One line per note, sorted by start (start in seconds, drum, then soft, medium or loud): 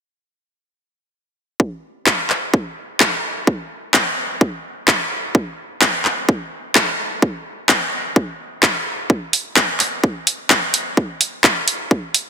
1.60 kick loud
2.06 kick loud
2.06 clap loud
2.30 clap soft
2.54 kick loud
3.00 kick loud
3.00 clap loud
3.47 kick loud
3.94 kick loud
3.94 clap loud
4.41 kick loud
4.88 kick loud
4.88 clap loud
5.35 kick loud
5.81 kick loud
5.81 clap loud
6.05 clap soft
6.29 kick loud
6.75 kick loud
6.75 clap loud
7.22 kick loud
7.69 kick loud
7.69 clap loud
8.16 kick loud
8.63 kick loud
8.63 clap loud
9.10 kick loud
9.33 open hi-hat loud
9.56 kick loud
9.56 clap loud
9.80 clap soft
9.80 open hi-hat medium
10.04 kick loud
10.27 open hi-hat medium
10.50 kick loud
10.50 clap loud
10.74 open hi-hat loud
10.97 kick loud
11.21 open hi-hat loud
11.44 kick loud
11.44 clap loud
11.68 open hi-hat medium
11.91 kick loud
12.14 open hi-hat medium